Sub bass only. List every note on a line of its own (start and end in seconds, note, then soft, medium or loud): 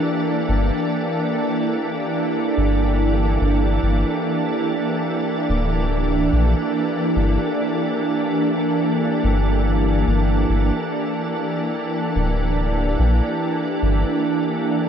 0.49 0.71 G1 medium
2.57 3.38 G1 medium
3.41 3.79 G1 medium
3.83 4.04 G1 medium
5.49 6.29 D1 loud
6.33 6.54 A#1 medium
7.16 7.38 G1 medium
9.24 10.04 G1 medium
10.07 10.45 G1 medium
10.49 10.71 G1 medium
12.16 12.96 D1 loud
12.99 13.21 A#1 medium
13.82 14.04 G1 medium